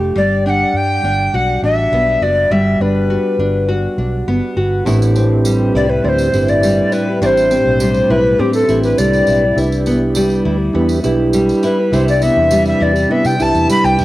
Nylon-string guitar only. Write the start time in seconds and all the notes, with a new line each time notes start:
Already playing: F3 A3 D4 G4
0.16 G3
0.46 D4
1.04 D4
1.34 F#4
1.63 D4
1.93 B3
2.22 F#4
2.51 G3
2.81 D4
3.10 F#4
3.40 D4
3.69 F#4
3.98 D4
4.28 B3
4.57 F#4
4.86 A2 E4
5.16 C4
5.46 G3
5.75 E4
6.04 C4
6.34 E4
6.64 G3
6.93 E4
7.22 A2 E4
7.51 C4
7.81 G3
8.10 E4
8.39 C4
8.69 E4
8.98 G3
9.28 E4
9.58 E4
9.87 B3
10.16 G3
10.45 E4
10.75 B3
11.04 E4
11.34 G3
11.63 E4
11.93 C3 E4
12.22 B3
12.51 G3
12.80 E4
13.11 B3
13.40 E4
13.69 G3
13.99 E4